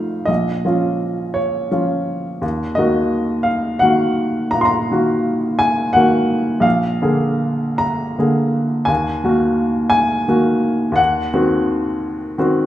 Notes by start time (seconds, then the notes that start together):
Already playing: A3 D#4 F4 F5
0.26 A#1 D#5
0.65 F3 C#4 F4
1.34 C#5
1.71 F3 C#4 F4
2.42 D#2
2.75 D#3 A#3 F#4 D#5
3.43 F5
3.79 D#3 A#3 F#4 F#5
4.51 A#2 A#5
4.61 C6
4.65 A#5
4.91 D#3 A#3 F#4
5.59 G#5
5.93 D#3 A#3 F#4 F#5
6.60 A#1 F5
7.02 D3 A#3 G#4
7.78 A#5
8.19 D3 A#3 G#4
8.85 D#2 G#5
9.24 D#3 A#3 F#4
9.90 G#5
10.28 D#3 A#3 F#4
10.92 D#2 F#5
11.33 D#3 C4 F#4
12.38 D#3 C4 F#4